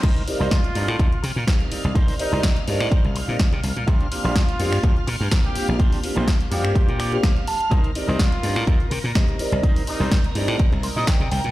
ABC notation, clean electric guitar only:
X:1
M:4/4
L:1/16
Q:"Swing 16ths" 1/4=125
K:Cm
V:1 name="Clean electric guitar"
[EBc]2 z [EBc] z4 [EBc] z6 z | [EBc]2 z [EBc] z4 [EBc] z6 z | [DGc]2 z [DGc] z4 [DGc] z6 z | [DGc]2 z [DGc] z4 [DGc] z d2 f2 =a2 |
[EBc]2 z [EBc] z4 [EBc] z6 z | [EBc]2 z [EBc] z4 [EBc] z c e g2 g2 |]